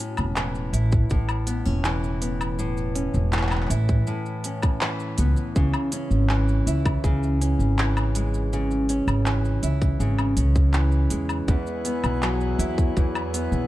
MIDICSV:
0, 0, Header, 1, 5, 480
1, 0, Start_track
1, 0, Tempo, 740741
1, 1682, Time_signature, 4, 2, 24, 8
1, 8859, End_track
2, 0, Start_track
2, 0, Title_t, "Harmonium"
2, 0, Program_c, 0, 20
2, 7443, Note_on_c, 0, 64, 77
2, 7443, Note_on_c, 0, 68, 70
2, 7447, Note_on_c, 0, 71, 74
2, 7449, Note_on_c, 0, 78, 84
2, 8859, Note_off_c, 0, 64, 0
2, 8859, Note_off_c, 0, 68, 0
2, 8859, Note_off_c, 0, 71, 0
2, 8859, Note_off_c, 0, 78, 0
2, 8859, End_track
3, 0, Start_track
3, 0, Title_t, "Nylon-string guitar"
3, 0, Program_c, 1, 24
3, 0, Note_on_c, 1, 45, 73
3, 0, Note_on_c, 1, 61, 55
3, 230, Note_on_c, 1, 52, 58
3, 473, Note_on_c, 1, 64, 59
3, 708, Note_off_c, 1, 45, 0
3, 716, Note_on_c, 1, 45, 70
3, 948, Note_off_c, 1, 61, 0
3, 951, Note_on_c, 1, 59, 58
3, 1072, Note_off_c, 1, 59, 0
3, 1072, Note_on_c, 1, 61, 50
3, 1191, Note_off_c, 1, 52, 0
3, 1194, Note_on_c, 1, 52, 66
3, 1434, Note_on_c, 1, 59, 54
3, 1668, Note_off_c, 1, 45, 0
3, 1676, Note_on_c, 1, 45, 72
3, 1904, Note_off_c, 1, 61, 0
3, 1911, Note_on_c, 1, 61, 54
3, 2152, Note_off_c, 1, 52, 0
3, 2155, Note_on_c, 1, 52, 62
3, 2394, Note_off_c, 1, 64, 0
3, 2397, Note_on_c, 1, 64, 58
3, 2631, Note_off_c, 1, 45, 0
3, 2638, Note_on_c, 1, 45, 71
3, 2883, Note_off_c, 1, 61, 0
3, 2885, Note_on_c, 1, 61, 55
3, 3120, Note_off_c, 1, 52, 0
3, 3122, Note_on_c, 1, 52, 65
3, 3356, Note_off_c, 1, 59, 0
3, 3363, Note_on_c, 1, 59, 58
3, 3600, Note_off_c, 1, 45, 0
3, 3606, Note_on_c, 1, 49, 81
3, 3651, Note_off_c, 1, 59, 0
3, 3839, Note_off_c, 1, 61, 0
3, 3841, Note_on_c, 1, 61, 57
3, 4087, Note_off_c, 1, 52, 0
3, 4090, Note_on_c, 1, 52, 64
3, 4320, Note_off_c, 1, 64, 0
3, 4323, Note_on_c, 1, 64, 60
3, 4555, Note_off_c, 1, 49, 0
3, 4563, Note_on_c, 1, 49, 75
3, 4795, Note_off_c, 1, 61, 0
3, 4803, Note_on_c, 1, 61, 54
3, 5046, Note_off_c, 1, 52, 0
3, 5049, Note_on_c, 1, 52, 67
3, 5287, Note_on_c, 1, 56, 55
3, 5519, Note_off_c, 1, 49, 0
3, 5527, Note_on_c, 1, 49, 81
3, 5756, Note_off_c, 1, 61, 0
3, 5764, Note_on_c, 1, 61, 57
3, 5999, Note_off_c, 1, 52, 0
3, 6002, Note_on_c, 1, 52, 66
3, 6239, Note_off_c, 1, 64, 0
3, 6241, Note_on_c, 1, 64, 62
3, 6472, Note_off_c, 1, 49, 0
3, 6480, Note_on_c, 1, 49, 74
3, 6711, Note_off_c, 1, 61, 0
3, 6719, Note_on_c, 1, 61, 59
3, 6957, Note_off_c, 1, 52, 0
3, 6960, Note_on_c, 1, 52, 65
3, 7195, Note_off_c, 1, 56, 0
3, 7198, Note_on_c, 1, 56, 54
3, 7440, Note_on_c, 1, 40, 79
3, 7488, Note_off_c, 1, 61, 0
3, 7489, Note_off_c, 1, 49, 0
3, 7682, Note_on_c, 1, 59, 56
3, 7917, Note_off_c, 1, 52, 0
3, 7920, Note_on_c, 1, 54, 61
3, 7939, Note_off_c, 1, 56, 0
3, 7939, Note_off_c, 1, 64, 0
3, 8156, Note_on_c, 1, 64, 62
3, 8393, Note_off_c, 1, 40, 0
3, 8401, Note_on_c, 1, 40, 73
3, 8637, Note_off_c, 1, 59, 0
3, 8640, Note_on_c, 1, 59, 58
3, 8859, Note_off_c, 1, 40, 0
3, 8859, Note_off_c, 1, 54, 0
3, 8859, Note_off_c, 1, 59, 0
3, 8859, Note_off_c, 1, 64, 0
3, 8859, End_track
4, 0, Start_track
4, 0, Title_t, "Upright bass"
4, 0, Program_c, 2, 32
4, 121, Note_on_c, 2, 28, 80
4, 443, Note_off_c, 2, 28, 0
4, 472, Note_on_c, 2, 33, 76
4, 669, Note_off_c, 2, 33, 0
4, 719, Note_on_c, 2, 33, 79
4, 1042, Note_off_c, 2, 33, 0
4, 1077, Note_on_c, 2, 28, 77
4, 2001, Note_off_c, 2, 28, 0
4, 2036, Note_on_c, 2, 28, 87
4, 2360, Note_off_c, 2, 28, 0
4, 2396, Note_on_c, 2, 33, 84
4, 2591, Note_off_c, 2, 33, 0
4, 3360, Note_on_c, 2, 37, 84
4, 3457, Note_off_c, 2, 37, 0
4, 3604, Note_on_c, 2, 37, 79
4, 3699, Note_off_c, 2, 37, 0
4, 3956, Note_on_c, 2, 32, 87
4, 4280, Note_off_c, 2, 32, 0
4, 4317, Note_on_c, 2, 37, 80
4, 4511, Note_off_c, 2, 37, 0
4, 4561, Note_on_c, 2, 37, 80
4, 4883, Note_off_c, 2, 37, 0
4, 4919, Note_on_c, 2, 32, 78
4, 5842, Note_off_c, 2, 32, 0
4, 5880, Note_on_c, 2, 32, 89
4, 6202, Note_off_c, 2, 32, 0
4, 6238, Note_on_c, 2, 37, 78
4, 6432, Note_off_c, 2, 37, 0
4, 6477, Note_on_c, 2, 32, 82
4, 6718, Note_on_c, 2, 37, 83
4, 6727, Note_off_c, 2, 32, 0
4, 7161, Note_off_c, 2, 37, 0
4, 7195, Note_on_c, 2, 40, 75
4, 7390, Note_off_c, 2, 40, 0
4, 7438, Note_on_c, 2, 40, 84
4, 7536, Note_off_c, 2, 40, 0
4, 7801, Note_on_c, 2, 35, 87
4, 8123, Note_off_c, 2, 35, 0
4, 8156, Note_on_c, 2, 40, 78
4, 8350, Note_off_c, 2, 40, 0
4, 8404, Note_on_c, 2, 40, 85
4, 8724, Note_off_c, 2, 40, 0
4, 8758, Note_on_c, 2, 35, 76
4, 8859, Note_off_c, 2, 35, 0
4, 8859, End_track
5, 0, Start_track
5, 0, Title_t, "Drums"
5, 112, Note_on_c, 9, 77, 71
5, 113, Note_on_c, 9, 82, 30
5, 177, Note_off_c, 9, 77, 0
5, 178, Note_off_c, 9, 82, 0
5, 234, Note_on_c, 9, 39, 93
5, 235, Note_on_c, 9, 82, 40
5, 299, Note_off_c, 9, 39, 0
5, 300, Note_off_c, 9, 82, 0
5, 356, Note_on_c, 9, 82, 20
5, 421, Note_off_c, 9, 82, 0
5, 477, Note_on_c, 9, 46, 81
5, 478, Note_on_c, 9, 82, 62
5, 542, Note_off_c, 9, 46, 0
5, 543, Note_off_c, 9, 82, 0
5, 595, Note_on_c, 9, 82, 30
5, 599, Note_on_c, 9, 36, 99
5, 660, Note_off_c, 9, 82, 0
5, 664, Note_off_c, 9, 36, 0
5, 713, Note_on_c, 9, 82, 40
5, 719, Note_on_c, 9, 36, 88
5, 778, Note_off_c, 9, 82, 0
5, 783, Note_off_c, 9, 36, 0
5, 834, Note_on_c, 9, 77, 73
5, 835, Note_on_c, 9, 82, 20
5, 898, Note_off_c, 9, 77, 0
5, 899, Note_off_c, 9, 82, 0
5, 952, Note_on_c, 9, 46, 82
5, 953, Note_on_c, 9, 82, 70
5, 1017, Note_off_c, 9, 46, 0
5, 1018, Note_off_c, 9, 82, 0
5, 1078, Note_on_c, 9, 82, 28
5, 1143, Note_off_c, 9, 82, 0
5, 1196, Note_on_c, 9, 39, 95
5, 1197, Note_on_c, 9, 82, 43
5, 1261, Note_off_c, 9, 39, 0
5, 1262, Note_off_c, 9, 82, 0
5, 1320, Note_on_c, 9, 82, 20
5, 1384, Note_off_c, 9, 82, 0
5, 1437, Note_on_c, 9, 46, 85
5, 1438, Note_on_c, 9, 82, 70
5, 1502, Note_off_c, 9, 46, 0
5, 1503, Note_off_c, 9, 82, 0
5, 1560, Note_on_c, 9, 77, 70
5, 1561, Note_on_c, 9, 82, 31
5, 1625, Note_off_c, 9, 77, 0
5, 1626, Note_off_c, 9, 82, 0
5, 1678, Note_on_c, 9, 82, 44
5, 1743, Note_off_c, 9, 82, 0
5, 1797, Note_on_c, 9, 82, 23
5, 1862, Note_off_c, 9, 82, 0
5, 1915, Note_on_c, 9, 46, 80
5, 1980, Note_off_c, 9, 46, 0
5, 2035, Note_on_c, 9, 82, 29
5, 2100, Note_off_c, 9, 82, 0
5, 2155, Note_on_c, 9, 39, 86
5, 2156, Note_on_c, 9, 82, 42
5, 2184, Note_off_c, 9, 39, 0
5, 2184, Note_on_c, 9, 39, 75
5, 2214, Note_off_c, 9, 39, 0
5, 2214, Note_on_c, 9, 39, 60
5, 2221, Note_off_c, 9, 82, 0
5, 2249, Note_off_c, 9, 39, 0
5, 2249, Note_on_c, 9, 39, 52
5, 2276, Note_off_c, 9, 39, 0
5, 2276, Note_on_c, 9, 39, 39
5, 2276, Note_on_c, 9, 77, 67
5, 2277, Note_on_c, 9, 82, 20
5, 2305, Note_off_c, 9, 39, 0
5, 2305, Note_on_c, 9, 39, 34
5, 2339, Note_off_c, 9, 39, 0
5, 2339, Note_on_c, 9, 39, 26
5, 2341, Note_off_c, 9, 77, 0
5, 2342, Note_off_c, 9, 82, 0
5, 2370, Note_off_c, 9, 39, 0
5, 2370, Note_on_c, 9, 39, 23
5, 2401, Note_on_c, 9, 46, 75
5, 2402, Note_on_c, 9, 82, 70
5, 2435, Note_off_c, 9, 39, 0
5, 2466, Note_off_c, 9, 46, 0
5, 2467, Note_off_c, 9, 82, 0
5, 2519, Note_on_c, 9, 82, 31
5, 2520, Note_on_c, 9, 36, 97
5, 2584, Note_off_c, 9, 82, 0
5, 2585, Note_off_c, 9, 36, 0
5, 2637, Note_on_c, 9, 82, 44
5, 2702, Note_off_c, 9, 82, 0
5, 2759, Note_on_c, 9, 82, 21
5, 2824, Note_off_c, 9, 82, 0
5, 2878, Note_on_c, 9, 46, 83
5, 2879, Note_on_c, 9, 82, 81
5, 2943, Note_off_c, 9, 46, 0
5, 2944, Note_off_c, 9, 82, 0
5, 2997, Note_on_c, 9, 77, 62
5, 2998, Note_on_c, 9, 82, 30
5, 3001, Note_on_c, 9, 36, 102
5, 3062, Note_off_c, 9, 77, 0
5, 3063, Note_off_c, 9, 82, 0
5, 3066, Note_off_c, 9, 36, 0
5, 3117, Note_on_c, 9, 39, 96
5, 3118, Note_on_c, 9, 82, 39
5, 3182, Note_off_c, 9, 39, 0
5, 3183, Note_off_c, 9, 82, 0
5, 3238, Note_on_c, 9, 82, 21
5, 3303, Note_off_c, 9, 82, 0
5, 3355, Note_on_c, 9, 46, 85
5, 3356, Note_on_c, 9, 82, 81
5, 3420, Note_off_c, 9, 46, 0
5, 3421, Note_off_c, 9, 82, 0
5, 3479, Note_on_c, 9, 82, 29
5, 3544, Note_off_c, 9, 82, 0
5, 3601, Note_on_c, 9, 82, 41
5, 3602, Note_on_c, 9, 36, 109
5, 3666, Note_off_c, 9, 82, 0
5, 3667, Note_off_c, 9, 36, 0
5, 3717, Note_on_c, 9, 77, 77
5, 3718, Note_on_c, 9, 82, 23
5, 3781, Note_off_c, 9, 77, 0
5, 3783, Note_off_c, 9, 82, 0
5, 3836, Note_on_c, 9, 46, 75
5, 3837, Note_on_c, 9, 82, 76
5, 3901, Note_off_c, 9, 46, 0
5, 3902, Note_off_c, 9, 82, 0
5, 3960, Note_on_c, 9, 82, 32
5, 4025, Note_off_c, 9, 82, 0
5, 4077, Note_on_c, 9, 39, 89
5, 4142, Note_off_c, 9, 39, 0
5, 4202, Note_on_c, 9, 82, 22
5, 4267, Note_off_c, 9, 82, 0
5, 4323, Note_on_c, 9, 46, 82
5, 4324, Note_on_c, 9, 82, 73
5, 4388, Note_off_c, 9, 46, 0
5, 4389, Note_off_c, 9, 82, 0
5, 4442, Note_on_c, 9, 36, 109
5, 4444, Note_on_c, 9, 77, 68
5, 4445, Note_on_c, 9, 82, 32
5, 4507, Note_off_c, 9, 36, 0
5, 4509, Note_off_c, 9, 77, 0
5, 4510, Note_off_c, 9, 82, 0
5, 4561, Note_on_c, 9, 36, 91
5, 4563, Note_on_c, 9, 82, 42
5, 4626, Note_off_c, 9, 36, 0
5, 4628, Note_off_c, 9, 82, 0
5, 4686, Note_on_c, 9, 82, 23
5, 4751, Note_off_c, 9, 82, 0
5, 4805, Note_on_c, 9, 46, 84
5, 4806, Note_on_c, 9, 82, 78
5, 4870, Note_off_c, 9, 46, 0
5, 4871, Note_off_c, 9, 82, 0
5, 4926, Note_on_c, 9, 82, 30
5, 4990, Note_off_c, 9, 82, 0
5, 5045, Note_on_c, 9, 39, 97
5, 5046, Note_on_c, 9, 82, 44
5, 5110, Note_off_c, 9, 39, 0
5, 5111, Note_off_c, 9, 82, 0
5, 5163, Note_on_c, 9, 77, 75
5, 5165, Note_on_c, 9, 82, 21
5, 5228, Note_off_c, 9, 77, 0
5, 5229, Note_off_c, 9, 82, 0
5, 5282, Note_on_c, 9, 46, 77
5, 5283, Note_on_c, 9, 82, 81
5, 5347, Note_off_c, 9, 46, 0
5, 5348, Note_off_c, 9, 82, 0
5, 5405, Note_on_c, 9, 82, 30
5, 5469, Note_off_c, 9, 82, 0
5, 5528, Note_on_c, 9, 82, 44
5, 5593, Note_off_c, 9, 82, 0
5, 5644, Note_on_c, 9, 82, 23
5, 5709, Note_off_c, 9, 82, 0
5, 5761, Note_on_c, 9, 46, 69
5, 5763, Note_on_c, 9, 82, 72
5, 5826, Note_off_c, 9, 46, 0
5, 5827, Note_off_c, 9, 82, 0
5, 5883, Note_on_c, 9, 77, 69
5, 5884, Note_on_c, 9, 82, 32
5, 5948, Note_off_c, 9, 77, 0
5, 5949, Note_off_c, 9, 82, 0
5, 6001, Note_on_c, 9, 39, 82
5, 6002, Note_on_c, 9, 82, 44
5, 6065, Note_off_c, 9, 39, 0
5, 6067, Note_off_c, 9, 82, 0
5, 6124, Note_on_c, 9, 82, 20
5, 6189, Note_off_c, 9, 82, 0
5, 6240, Note_on_c, 9, 46, 71
5, 6241, Note_on_c, 9, 82, 69
5, 6305, Note_off_c, 9, 46, 0
5, 6306, Note_off_c, 9, 82, 0
5, 6361, Note_on_c, 9, 36, 101
5, 6363, Note_on_c, 9, 82, 33
5, 6426, Note_off_c, 9, 36, 0
5, 6428, Note_off_c, 9, 82, 0
5, 6483, Note_on_c, 9, 82, 42
5, 6548, Note_off_c, 9, 82, 0
5, 6600, Note_on_c, 9, 77, 72
5, 6601, Note_on_c, 9, 82, 22
5, 6665, Note_off_c, 9, 77, 0
5, 6666, Note_off_c, 9, 82, 0
5, 6718, Note_on_c, 9, 46, 80
5, 6719, Note_on_c, 9, 82, 81
5, 6783, Note_off_c, 9, 46, 0
5, 6784, Note_off_c, 9, 82, 0
5, 6840, Note_on_c, 9, 36, 101
5, 6840, Note_on_c, 9, 82, 28
5, 6905, Note_off_c, 9, 36, 0
5, 6905, Note_off_c, 9, 82, 0
5, 6956, Note_on_c, 9, 39, 86
5, 6957, Note_on_c, 9, 82, 41
5, 7021, Note_off_c, 9, 39, 0
5, 7022, Note_off_c, 9, 82, 0
5, 7075, Note_on_c, 9, 82, 22
5, 7140, Note_off_c, 9, 82, 0
5, 7196, Note_on_c, 9, 46, 79
5, 7197, Note_on_c, 9, 82, 74
5, 7260, Note_off_c, 9, 46, 0
5, 7262, Note_off_c, 9, 82, 0
5, 7317, Note_on_c, 9, 77, 67
5, 7318, Note_on_c, 9, 82, 29
5, 7382, Note_off_c, 9, 77, 0
5, 7383, Note_off_c, 9, 82, 0
5, 7440, Note_on_c, 9, 82, 38
5, 7441, Note_on_c, 9, 36, 110
5, 7505, Note_off_c, 9, 36, 0
5, 7505, Note_off_c, 9, 82, 0
5, 7561, Note_on_c, 9, 82, 23
5, 7626, Note_off_c, 9, 82, 0
5, 7678, Note_on_c, 9, 46, 77
5, 7679, Note_on_c, 9, 82, 68
5, 7743, Note_off_c, 9, 46, 0
5, 7744, Note_off_c, 9, 82, 0
5, 7800, Note_on_c, 9, 77, 68
5, 7801, Note_on_c, 9, 82, 32
5, 7864, Note_off_c, 9, 77, 0
5, 7866, Note_off_c, 9, 82, 0
5, 7922, Note_on_c, 9, 39, 86
5, 7923, Note_on_c, 9, 82, 42
5, 7986, Note_off_c, 9, 39, 0
5, 7988, Note_off_c, 9, 82, 0
5, 8040, Note_on_c, 9, 82, 20
5, 8105, Note_off_c, 9, 82, 0
5, 8161, Note_on_c, 9, 46, 80
5, 8163, Note_on_c, 9, 82, 76
5, 8226, Note_off_c, 9, 46, 0
5, 8227, Note_off_c, 9, 82, 0
5, 8281, Note_on_c, 9, 36, 100
5, 8284, Note_on_c, 9, 82, 31
5, 8346, Note_off_c, 9, 36, 0
5, 8349, Note_off_c, 9, 82, 0
5, 8403, Note_on_c, 9, 36, 90
5, 8404, Note_on_c, 9, 82, 41
5, 8467, Note_off_c, 9, 36, 0
5, 8469, Note_off_c, 9, 82, 0
5, 8524, Note_on_c, 9, 77, 77
5, 8525, Note_on_c, 9, 82, 21
5, 8588, Note_off_c, 9, 77, 0
5, 8590, Note_off_c, 9, 82, 0
5, 8645, Note_on_c, 9, 46, 81
5, 8646, Note_on_c, 9, 82, 69
5, 8709, Note_off_c, 9, 46, 0
5, 8711, Note_off_c, 9, 82, 0
5, 8764, Note_on_c, 9, 82, 30
5, 8829, Note_off_c, 9, 82, 0
5, 8859, End_track
0, 0, End_of_file